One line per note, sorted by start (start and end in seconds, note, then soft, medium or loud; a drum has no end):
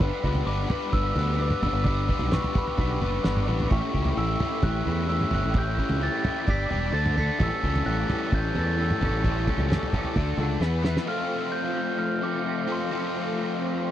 0.00 0.10 G1 loud
0.00 0.23 G3 medium
0.00 0.23 B3 medium
0.00 0.23 D4 medium
0.00 0.24 B4 loud
0.00 0.48 B5 medium
0.00 kick loud
0.00 floor tom medium
0.23 0.42 C#2 loud
0.23 0.45 G3 medium
0.23 0.46 B3 medium
0.23 0.46 D4 medium
0.23 0.46 B4 medium
0.23 kick medium
0.35 floor tom medium
0.45 0.65 G1 medium
0.45 0.68 G3 medium
0.45 0.69 B3 loud
0.45 0.68 D4 medium
0.45 0.69 B4 loud
0.45 0.90 D6 medium
0.69 0.90 G3 medium
0.69 0.90 B3 medium
0.69 0.89 D4 medium
0.69 0.90 B4 medium
0.69 floor tom medium
0.69 mid tom medium
0.90 1.11 G1 medium
0.90 1.13 G3 medium
0.90 1.13 B3 loud
0.90 1.13 D4 medium
0.90 1.14 B4 loud
0.90 1.41 E6 loud
0.90 kick loud
0.90 floor tom medium
1.13 1.52 D2 medium
1.13 1.36 G3 medium
1.13 1.36 B3 medium
1.13 1.35 D4 medium
1.13 1.36 B4 loud
1.13 floor tom medium
1.36 1.60 G3 medium
1.36 1.60 B3 loud
1.36 1.59 D4 medium
1.36 1.60 B4 loud
1.42 1.65 D6 medium
1.50 mid tom medium
1.60 1.72 F#1 medium
1.60 1.84 G3 medium
1.60 1.84 B3 medium
1.60 1.84 D4 medium
1.60 1.85 B4 medium
1.60 1.87 E6 medium
1.60 floor tom medium
1.73 2.10 G1 medium
1.84 2.07 G3 medium
1.84 2.07 B3 medium
1.84 2.07 D4 medium
1.84 2.07 B4 medium
1.84 2.33 D6 medium
1.84 kick loud
1.84 floor tom medium
2.08 2.29 G3 medium
2.08 2.29 B3 medium
2.08 2.28 D4 medium
2.08 2.29 B4 medium
2.08 kick medium
2.08 floor tom medium
2.19 2.38 B1 medium
2.19 floor tom medium
2.29 2.54 G3 medium
2.29 2.53 B3 medium
2.29 2.52 D4 medium
2.29 2.53 B4 loud
2.29 2.57 C#6 medium
2.29 snare medium
2.29 mid tom medium
2.44 floor tom medium
2.53 2.77 G3 medium
2.53 2.77 B3 medium
2.53 2.77 D4 medium
2.53 2.78 B4 medium
2.53 kick medium
2.53 floor tom medium
2.53 mid tom medium
2.58 3.00 B5 medium
2.67 floor tom medium
2.78 2.97 B1 medium
2.78 3.01 G3 loud
2.78 3.01 B3 loud
2.78 3.00 D4 medium
2.78 3.01 B4 loud
2.78 kick loud
2.78 floor tom medium
3.00 3.19 F#1 medium
3.00 3.23 G3 medium
3.00 3.23 B3 medium
3.00 3.22 D4 medium
3.00 3.23 B4 medium
3.00 floor tom medium
3.23 3.46 G1 medium
3.23 3.45 G3 medium
3.23 3.45 B3 medium
3.23 3.45 D4 medium
3.23 3.46 B4 medium
3.23 snare medium
3.37 mid tom medium
3.46 3.68 A1 medium
3.46 3.69 G3 medium
3.46 3.69 B3 medium
3.46 3.69 D4 medium
3.46 3.69 B4 medium
3.46 high tom medium
3.60 floor tom medium
3.69 3.81 A1 loud
3.69 3.92 A2 medium
3.69 3.93 A3 medium
3.69 3.93 C#4 medium
3.69 3.93 E4 medium
3.69 3.93 G4 medium
3.69 4.14 C#6 medium
3.69 kick loud
3.69 floor tom medium
3.93 4.13 C#2 medium
3.93 4.16 A2 medium
3.93 4.16 A3 medium
3.93 4.16 C#4 medium
3.93 4.17 E4 medium
3.93 4.17 G4 medium
3.93 kick medium
4.05 floor tom medium
4.17 4.35 A1 medium
4.17 4.38 A2 medium
4.17 4.38 A3 loud
4.17 4.39 C#4 medium
4.17 4.40 E4 medium
4.17 4.39 G4 loud
4.17 4.65 E6 medium
4.39 4.62 A2 medium
4.39 4.63 A3 medium
4.39 4.63 C#4 medium
4.39 4.64 E4 medium
4.39 4.63 G4 medium
4.39 floor tom medium
4.39 mid tom medium
4.63 4.81 A1 loud
4.63 4.85 A2 medium
4.63 4.85 A3 loud
4.63 4.85 C#4 loud
4.63 4.86 E4 loud
4.63 4.85 G4 loud
4.63 5.11 F#6 medium
4.63 kick medium
4.63 floor tom medium
4.86 5.23 E2 medium
4.86 5.06 A2 medium
4.86 5.07 A3 medium
4.86 5.07 C#4 medium
4.86 5.08 E4 medium
4.86 5.07 G4 medium
4.86 floor tom medium
5.07 5.30 A2 medium
5.07 5.30 A3 medium
5.07 5.30 C#4 medium
5.07 5.31 E4 medium
5.07 5.31 G4 medium
5.07 5.33 E6 medium
5.21 mid tom medium
5.31 5.42 G1 medium
5.31 5.52 A2 medium
5.31 5.53 A3 medium
5.31 5.53 C#4 medium
5.31 5.53 E4 medium
5.31 5.53 G4 medium
5.31 5.57 F#6 medium
5.31 floor tom medium
5.44 5.80 A1 medium
5.54 5.76 A2 medium
5.54 5.76 A3 medium
5.54 5.76 C#4 medium
5.54 5.77 E4 medium
5.54 5.76 G4 medium
5.54 kick loud
5.54 floor tom medium
5.58 6.04 G6 loud
5.77 5.99 A2 medium
5.77 5.99 A3 medium
5.77 5.99 C#4 medium
5.77 6.00 E4 medium
5.77 6.00 G4 medium
5.77 kick medium
5.89 6.08 C#2 medium
5.89 floor tom medium
6.00 6.21 A2 medium
6.00 6.21 A3 medium
6.00 6.22 C#4 medium
6.00 6.22 E4 medium
6.00 6.22 G4 loud
6.00 6.50 A6 loud
6.22 6.44 A2 medium
6.22 6.45 A3 medium
6.22 6.45 C#4 medium
6.22 6.46 E4 loud
6.22 6.45 G4 medium
6.22 floor tom medium
6.22 mid tom medium
6.44 6.66 G1 medium
6.44 6.67 G3 medium
6.44 6.67 D4 medium
6.44 6.67 G4 loud
6.44 6.68 D5 loud
6.44 kick loud
6.48 6.92 B6 loud
6.48 floor tom medium
6.68 6.89 E1 medium
6.68 6.91 G3 medium
6.68 6.90 D4 medium
6.68 6.91 G4 medium
6.68 6.91 D5 medium
6.68 floor tom medium
6.91 7.29 D2 medium
6.91 7.13 D3 medium
6.91 7.15 A3 medium
6.91 7.14 D4 medium
6.91 7.15 A4 medium
6.91 7.17 A6 medium
7.06 mid tom medium
7.15 7.37 D3 medium
7.15 7.39 A3 medium
7.15 7.38 D4 medium
7.15 7.39 A4 medium
7.15 7.39 B6 medium
7.15 floor tom medium
7.38 7.49 A1 loud
7.38 7.61 A2 medium
7.38 7.62 E3 medium
7.38 7.62 G3 medium
7.38 7.62 C#4 loud
7.38 7.63 A4 medium
7.38 kick loud
7.38 floor tom medium
7.43 7.89 E6 medium
7.62 7.82 C#2 medium
7.62 7.85 A2 medium
7.62 7.85 E3 medium
7.62 7.86 G3 medium
7.62 7.85 C#4 medium
7.62 7.87 A4 medium
7.62 kick medium
7.76 floor tom medium
7.86 8.04 A1 medium
7.86 8.07 A2 loud
7.86 8.08 E3 loud
7.86 8.08 G3 loud
7.86 8.08 C#4 medium
7.86 8.08 A4 loud
7.86 8.27 F#6 medium
8.09 8.31 A2 medium
8.09 8.31 E3 medium
8.09 8.31 G3 medium
8.09 8.32 C#4 medium
8.09 8.32 A4 medium
8.09 floor tom medium
8.09 mid tom medium
8.28 8.33 A6 medium
8.32 8.51 A1 medium
8.32 8.55 A2 medium
8.32 8.54 E3 medium
8.32 8.55 G3 loud
8.32 8.55 C#4 loud
8.32 8.55 A4 loud
8.32 8.55 G6 loud
8.32 kick loud
8.32 floor tom medium
8.55 8.91 E2 medium
8.55 8.76 A2 medium
8.55 8.76 E3 medium
8.55 8.77 G3 medium
8.55 8.77 C#4 medium
8.55 8.77 A4 medium
8.55 floor tom medium
8.59 8.81 A6 medium
8.77 8.99 A2 medium
8.77 9.00 E3 medium
8.77 9.00 G3 medium
8.77 9.01 C#4 loud
8.77 9.01 A4 loud
8.82 10.60 E6 medium
8.91 mid tom medium
9.01 9.10 G1 medium
9.01 9.23 A2 medium
9.01 9.23 E3 medium
9.01 9.24 G3 medium
9.01 9.24 C#4 medium
9.01 9.24 A4 medium
9.01 floor tom medium
9.11 9.48 A1 medium
9.24 9.46 A2 medium
9.24 9.47 E3 medium
9.24 9.46 G3 medium
9.24 9.47 C#4 medium
9.24 9.47 A4 medium
9.24 kick loud
9.24 floor tom medium
9.47 9.67 A2 medium
9.47 9.68 E3 medium
9.47 9.68 G3 medium
9.47 9.69 C#4 medium
9.47 9.69 A4 medium
9.47 kick medium
9.47 floor tom medium
9.58 9.76 C#2 medium
9.58 floor tom medium
9.69 9.91 A2 medium
9.69 9.91 E3 medium
9.69 9.92 G3 medium
9.69 9.91 C#4 medium
9.69 9.92 A4 loud
9.69 snare medium
9.69 mid tom medium
9.83 floor tom medium
9.92 10.14 A2 medium
9.92 10.14 E3 medium
9.92 10.14 G3 medium
9.92 10.14 C#4 medium
9.92 10.14 A4 medium
9.92 kick medium
9.92 floor tom medium
9.92 mid tom medium
10.04 floor tom medium
10.15 10.34 D2 medium
10.15 10.36 D3 medium
10.15 10.37 A3 loud
10.15 10.37 D4 medium
10.15 10.37 A4 loud
10.15 kick loud
10.15 floor tom medium
10.37 10.56 C#2 medium
10.37 10.60 D3 medium
10.37 10.60 A3 medium
10.37 10.60 D4 medium
10.37 10.60 A4 medium
10.37 floor tom medium
10.60 10.97 E2 medium
10.60 10.82 E3 medium
10.60 10.83 B3 medium
10.60 10.83 E4 medium
10.60 10.84 B4 loud
10.60 snare medium
10.83 11.05 E3 medium
10.83 11.06 B3 medium
10.83 11.06 E4 medium
10.83 11.06 B4 medium
10.83 snare medium
10.97 snare medium
11.06 12.20 F3 medium
11.06 12.20 A3 medium
11.06 12.21 C4 medium
11.06 12.21 F4 medium
11.06 12.20 A4 loud
11.06 11.55 F6 loud
11.52 11.74 G6 loud
11.75 11.97 G6 medium
11.99 12.23 F6 loud
12.21 12.42 F3 medium
12.21 12.43 A3 medium
12.21 12.44 C4 medium
12.21 12.44 F4 medium
12.21 12.44 A4 medium
12.21 12.70 D6 medium
12.43 12.89 F3 medium
12.43 12.90 A3 medium
12.43 12.90 C4 medium
12.43 12.90 F4 medium
12.43 12.90 A4 medium
12.67 12.89 F3 medium
12.67 12.91 A3 medium
12.67 12.90 C4 medium
12.67 12.89 F4 medium
12.72 13.35 C6 medium
12.91 13.91 F3 medium
12.91 13.91 A3 medium
12.91 13.91 C4 medium
12.91 13.91 F4 medium
12.91 13.91 A4 medium